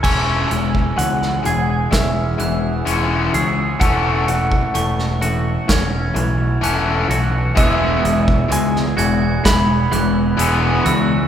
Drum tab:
CC |x---------------|----------------|----------------|
HH |--x-x-x-x-x-x-x-|x-x-x-x-x-x-x-x-|x-x-x-x-x-x-x-x-|
SD |-----o--o-------|-----o--o-------|-----o--o-------|
BD |o--o----o-------|o--o----o-------|o--o----o-------|